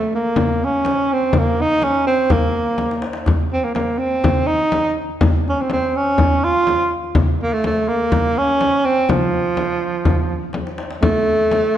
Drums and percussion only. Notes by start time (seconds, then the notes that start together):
0.36 frame drum, darbuka dum
0.61 darbuka ka
0.74 darbuka ka
0.85 darbuka tek, frame drum
1.23 darbuka ka
1.33 frame drum, darbuka dum
1.57 darbuka ka
1.70 darbuka ka
1.82 darbuka tek, frame drum
1.94 darbuka ka
2.30 darbuka dum, frame drum
2.54 darbuka ka
2.78 darbuka tek, frame drum
2.91 darbuka ka
3.02 darbuka tek
3.13 darbuka ka
3.26 darbuka dum, frame drum
3.50 darbuka ka
3.75 darbuka tek, frame drum
4.24 darbuka dum, frame drum
4.49 darbuka ka
4.60 darbuka ka
4.72 darbuka tek, frame drum
5.12 darbuka ka
5.21 frame drum, darbuka dum
5.48 darbuka ka
5.70 darbuka tek, frame drum
6.18 frame drum, darbuka dum
6.44 darbuka ka
6.67 darbuka tek, frame drum
7.04 darbuka ka
7.15 frame drum, darbuka dum
7.41 darbuka ka
7.64 darbuka tek, frame drum
8.12 frame drum, darbuka dum
8.37 darbuka ka
8.49 darbuka ka
8.61 darbuka tek, frame drum
8.98 darbuka ka
9.09 darbuka dum, frame drum
9.21 darbuka ka
9.34 darbuka ka
9.46 darbuka ka
9.57 darbuka tek, frame drum
9.70 darbuka ka
10.05 darbuka dum, frame drum
10.30 darbuka ka
10.53 darbuka tek, frame drum
10.67 darbuka ka
10.78 darbuka tek
10.91 darbuka ka
11.03 frame drum, darbuka dum
11.41 darbuka ka
11.51 darbuka tek, frame drum
11.65 darbuka ka